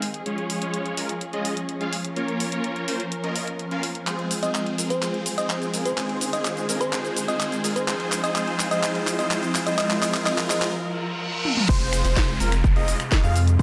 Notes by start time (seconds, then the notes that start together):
Already playing: D#3 C4 G#4, riser
0.02 open hi-hat
0.14 closed hi-hat
0.26 F3 G#3 C#4 F4 G#4 C#5, closed hi-hat
0.38 closed hi-hat
0.50 open hi-hat
0.62 G#3 C#4 F4 G#4 C#5, closed hi-hat
0.74 closed hi-hat
0.86 closed hi-hat
0.97 G#3 C#4 F4 G#4 A#4, open hi-hat
1.09 closed hi-hat
1.21 closed hi-hat
1.33 G#3 C#4 F4 G#4 D#5, closed hi-hat
1.45 open hi-hat
1.57 closed hi-hat
1.69 closed hi-hat
1.81 G#3 C#4 F4 G#4 F5, closed hi-hat
1.93 open hi-hat
2.05 closed hi-hat
2.16 A#3 C#4 F4 A#4 C#5, closed hi-hat
2.28 closed hi-hat
2.40 open hi-hat
2.52 A#3 C#4 F4 A#4 C#5, closed hi-hat
2.64 closed hi-hat
2.76 closed hi-hat
2.88 A#3 C#4 F4 A#4 C5, open hi-hat
3.00 closed hi-hat
3.12 closed hi-hat
3.24 A#3 C#4 F4 A#4 D#5, closed hi-hat
3.36 open hi-hat
3.47 closed hi-hat
3.59 closed hi-hat
3.71 A#3 C#4 F4 A#4 F5, closed hi-hat
3.83 open hi-hat
3.95 closed hi-hat
4.07 G#3 C4 F4 G#4 C5, clap, closed hi-hat, shaker
4.19 closed hi-hat
4.31 open hi-hat, shaker
4.43 G#3 C4 F4 G#4 C5 D#5, closed hi-hat, shaker
4.55 clap, closed hi-hat, shaker
4.67 closed hi-hat
4.78 G#3 C4 F4 G#4 A#4, open hi-hat, shaker
4.90 C5, closed hi-hat, shaker
5.02 G#3 C4 F4 G#4 C5, clap, closed hi-hat, shaker
5.14 closed hi-hat
5.26 open hi-hat, shaker
5.38 G#3 C4 F4 G#4 C5 D#5, closed hi-hat, shaker
5.50 clap, closed hi-hat, shaker
5.62 closed hi-hat, shaker
5.74 G#3 C4 F4 G#4 A#4, open hi-hat, shaker
5.86 C5, closed hi-hat, shaker
5.97 D#3 G#3 C4 F4 G#4 C5, clap, closed hi-hat, shaker
6.09 closed hi-hat
6.21 open hi-hat, shaker
6.33 G#3 C4 F4 G#4 C5 D#5, closed hi-hat, shaker
6.45 clap, closed hi-hat, shaker
6.57 closed hi-hat, shaker
6.69 G#3 C4 F4 G#4 A#4, open hi-hat, shaker
6.81 C5, closed hi-hat, shaker
6.93 G#3 C4 F4 G#4 C5, clap, closed hi-hat, shaker
7.05 closed hi-hat, shaker
7.17 open hi-hat, shaker
7.28 G#3 C4 F4 G#4 C5 D#5, closed hi-hat, shaker
7.40 clap, closed hi-hat, shaker
7.52 closed hi-hat, shaker
7.64 G#3 C4 F4 G#4 A#4, open hi-hat, shaker
7.76 C5, closed hi-hat, shaker
7.88 F3 G#3 C4 F4 G#4 C5, clap, closed hi-hat, shaker
8.00 closed hi-hat
8.12 clap, open hi-hat, shaker
8.24 G#3 C4 F4 G#4 C5 D#5, closed hi-hat, shaker
8.36 G#3 C4 F4 G#4 C5, clap, closed hi-hat, shaker
8.48 closed hi-hat
8.59 clap, open hi-hat, shaker
8.71 G#3 C4 F4 G#4 C5 D#5, closed hi-hat, shaker
8.83 G#3 C4 F4 G#4 C5, clap, closed hi-hat, shaker
8.95 closed hi-hat
9.07 clap, open hi-hat, shaker
9.19 G#3 C4 F4 G#4 C5 D#5, closed hi-hat, shaker
9.31 G#3 C4 F4 G#4 C5, clap, closed hi-hat, shaker
9.43 closed hi-hat, shaker
9.55 clap, open hi-hat, shaker
9.66 G#3 C4 F4 G#4 C5 D#5, closed hi-hat, shaker
9.78 G#3 C4 F4 G#4 A#4 C5 D#5, clap, closed hi-hat, shaker
9.90 clap, closed hi-hat, shaker
10.02 G#3 C4 F4 G#4 C5 D#5, clap, open hi-hat, shaker
10.14 clap, closed hi-hat, shaker
10.26 G#3 C4 F4 G#4 C5 D#5, clap, closed hi-hat, shaker
10.38 clap, closed hi-hat, shaker
10.50 G#3 C4 F4 G#4 C5 D#5, clap, open hi-hat, shaker
10.62 clap, closed hi-hat, shaker
10.74 reverse cymbal
11.45 high tom
11.57 mid tom
11.69 F1 C3 G#3 C4 F4 G#4 C5, kick, closed hi-hat, crash, downlifter, shaker
11.81 closed hi-hat
11.93 finger snap, open hi-hat, shaker
12.05 F1 G#3 C4 F4 G#4 C5, closed hi-hat, shaker
12.16 kick, snare, closed hi-hat, shaker
12.28 closed hi-hat
12.40 F1 G#3 C4 F4 G#4 A#4, open hi-hat, shaker
12.52 finger snap, closed hi-hat, shaker
12.64 kick, closed hi-hat, shaker
12.76 F1 G#3 C4 F4 G#4 D#5, closed hi-hat
12.88 open hi-hat, shaker
13.00 finger snap, closed hi-hat, shaker
13.12 kick, snare, closed hi-hat, shaker
13.24 F2 G#3 C4 F4 G#4 F5, closed hi-hat, shaker
13.36 open hi-hat, shaker
13.47 closed hi-hat, shaker
13.59 G#1 G#3 C4 D#4 G#4 C5, kick, closed hi-hat